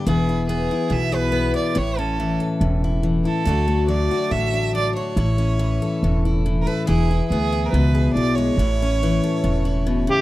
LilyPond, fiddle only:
\new Staff \with { instrumentName = "Fiddle" } { \time 4/4 \key a \mixolydian \tempo 4 = 141 gis'4 gis'4 e''8 b'4 d''8 | cis''8 a'4 r2 a'8~ | a'4 d''4 e''4 d''8 cis''8~ | cis''2~ cis''8 r8. r32 bes'32 b'8 |
gis'4 \tuplet 3/2 { gis'4~ gis'16 bes'16 } b'4 d''8 cis''8~ | cis''2.~ cis''8 r8 | }